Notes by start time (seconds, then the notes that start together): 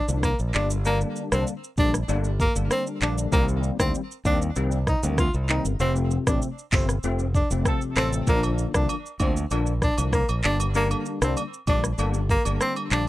0.08 C2 D3 F3 A#3 D4, shaker
0.23 A#3, kick, cross-stick, shaker
0.39 A#1, shaker
0.53 G1 D3 G3 A#3 D4, clap, shaker
0.70 shaker
0.85 D3 G3 A#3 D4, shaker
1.01 shaker
1.16 shaker
1.32 C2 D3 G3 A#3 C4 D4, cross-stick, shaker
1.47 shaker
1.64 shaker
1.77 A#1 D3 G3 A#3 D4, kick, shaker
1.94 cross-stick, shaker
2.08 G1 D3 G3 A#3 D4, shaker
2.24 shaker
2.40 A#3, kick, shaker
2.55 G1 D3 G3 A#3 D4, shaker
2.71 C4, cross-stick, shaker
2.87 shaker
3.01 A#1 D3 G3 A#3 D4, clap, shaker
3.18 shaker
3.32 C2 D#3 G3 A#3 C4, kick, shaker
3.48 shaker
3.63 shaker
3.79 D2 D#3 G3 A#3 C4, kick, cross-stick, shaker
3.95 shaker
4.11 shaker
4.25 D#2 D#3 G3 A#3 C4 D4, kick, shaker
4.42 shaker
4.56 C2 D#3 G3 A#3 C4, shaker
4.72 shaker
4.87 D#4, kick, cross-stick, shaker
5.03 D2 D#3 G3 A#3 C4, shaker
5.18 F4, kick, cross-stick, shaker
5.34 C2, shaker
5.48 D#3 G3 A#3 C4 D#4, clap, shaker
5.65 G1, shaker
5.80 F1 C3 F3 A3 C4, shaker
5.96 shaker
6.11 shaker
6.27 A1 C3 F3 A3 C4 D4, kick, cross-stick, shaker
6.42 shaker
6.58 shaker
6.72 G1 C3 F3 A3 C4, kick, clap, open hi-hat, shaker
6.89 cross-stick, shaker
7.03 F1 C3 F3 A3 C4, shaker
7.19 shaker
7.35 D4, kick, shaker
7.51 F1 C3 F3 A3 C4, shaker
7.65 F3 C4 A4, kick, cross-stick, shaker
7.81 shaker
7.96 A1 C3 F3 A3 C4 A4, cross-stick, clap, open hi-hat, shaker
8.13 shaker
8.27 A#1 D3 F3 A#3 D4, kick, shaker
8.43 high agogo, shaker
8.58 shaker
8.74 C2 D3 F3 A#3 D4, kick, cross-stick, shaker
8.89 high agogo, shaker
9.06 shaker
9.20 D2 D3 F3 A#3 C4 D4, kick, high agogo, shaker
9.37 shaker
9.51 A#1 D3 F3 A#3 D4, high agogo, shaker
9.66 shaker
9.82 D4, kick, cross-stick, shaker
9.98 C2 D3 F3 A#3 D4, high agogo, shaker
10.13 A#3, kick, cross-stick, shaker
10.29 A#1, high agogo, shaker
10.43 G1 D3 G3 A#3 D4, clap, shaker
10.60 high agogo, shaker
10.75 D3 G3 A#3 D4, shaker
10.91 high agogo, shaker
11.06 shaker
11.22 C2 D3 G3 A#3 C4 D4, cross-stick, shaker
11.37 high agogo, shaker
11.54 shaker
11.67 A#1 D3 G3 A#3 D4, kick, high agogo, shaker
11.84 cross-stick, shaker
11.98 G1 D3 G3 A#3 D4, high agogo, shaker
12.14 shaker
12.29 A#3, kick, shaker
12.45 G1 D3 G3 A#3 D4, high agogo, shaker
12.61 C4, cross-stick, shaker
12.76 high agogo, shaker
12.91 A#1 D3 G3 A#3 D4, clap, shaker